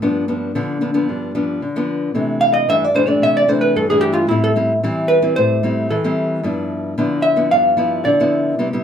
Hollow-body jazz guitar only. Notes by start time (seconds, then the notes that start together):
Already playing: F4
2.41 F5
2.54 D#5
2.70 E5
2.84 D5
2.96 C5
3.08 D5
3.23 E5
3.37 D5
3.49 C5
3.61 B4
3.76 A4
3.90 G#4
4.01 G4
4.13 F4
4.29 E4
4.44 A4
5.08 B4
5.36 C5
5.90 A4
7.22 E5
7.51 F5
8.05 D5